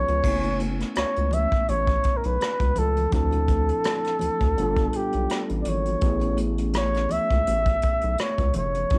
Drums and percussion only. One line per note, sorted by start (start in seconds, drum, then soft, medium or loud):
0.08 closed hi-hat soft
0.08 low conga medium
0.23 kick medium
0.23 crash medium
0.23 muted conga soft
0.42 closed hi-hat soft
0.42 muted conga soft
0.59 closed hi-hat medium
0.59 high conga medium
0.80 cross-stick soft
0.80 closed hi-hat soft
0.95 cross-stick loud
0.95 closed hi-hat medium
0.95 high conga medium
1.16 closed hi-hat soft
1.31 closed hi-hat medium
1.31 high conga medium
1.31 low conga medium
1.52 kick medium
1.52 closed hi-hat soft
1.68 closed hi-hat medium
1.68 high conga soft
1.87 kick medium
1.87 closed hi-hat medium
1.87 muted conga soft
2.03 kick medium
2.03 closed hi-hat medium
2.23 closed hi-hat soft
2.40 cross-stick medium
2.40 closed hi-hat medium
2.40 high conga soft
2.60 kick medium
2.60 closed hi-hat soft
2.60 muted conga soft
2.75 closed hi-hat medium
2.75 low conga medium
2.96 closed hi-hat soft
2.96 low conga medium
3.12 kick loud
3.12 closed hi-hat medium
3.31 closed hi-hat soft
3.31 muted conga soft
3.48 kick medium
3.48 closed hi-hat medium
3.48 high conga medium
3.69 closed hi-hat medium
3.84 cross-stick loud
3.84 closed hi-hat medium
3.84 muted conga soft
3.84 high conga medium
4.04 cross-stick soft
4.04 closed hi-hat soft
4.19 closed hi-hat medium
4.19 high conga medium
4.19 low conga medium
4.41 kick medium
4.41 closed hi-hat soft
4.58 closed hi-hat medium
4.58 muted conga soft
4.58 high conga soft
4.77 kick medium
4.77 closed hi-hat medium
4.93 closed hi-hat medium
5.12 closed hi-hat soft
5.30 cross-stick medium
5.30 closed hi-hat medium
5.30 high conga soft
5.49 closed hi-hat soft
5.49 muted conga soft
5.65 closed hi-hat medium
5.65 low conga medium
5.85 closed hi-hat soft
5.85 low conga medium
6.01 kick loud
6.01 closed hi-hat medium
6.01 muted conga soft
6.20 closed hi-hat soft
6.20 muted conga soft
6.37 closed hi-hat medium
6.37 high conga medium
6.58 closed hi-hat medium
6.73 cross-stick loud
6.73 closed hi-hat medium
6.73 high conga medium
6.94 cross-stick soft
6.94 closed hi-hat soft
7.09 closed hi-hat medium
7.09 high conga medium
7.09 low conga medium
7.30 kick medium
7.30 closed hi-hat soft
7.47 closed hi-hat medium
7.47 muted conga soft
7.47 high conga soft
7.65 kick medium
7.65 closed hi-hat medium
7.65 muted conga soft
7.82 kick medium
7.82 closed hi-hat medium
8.01 closed hi-hat soft
8.18 cross-stick medium
8.18 closed hi-hat medium
8.18 muted conga soft
8.18 high conga medium
8.38 kick medium
8.38 closed hi-hat soft
8.38 muted conga soft
8.53 closed hi-hat medium
8.53 low conga medium
8.74 closed hi-hat soft
8.74 low conga medium
8.90 kick loud
8.90 closed hi-hat medium
8.90 muted conga soft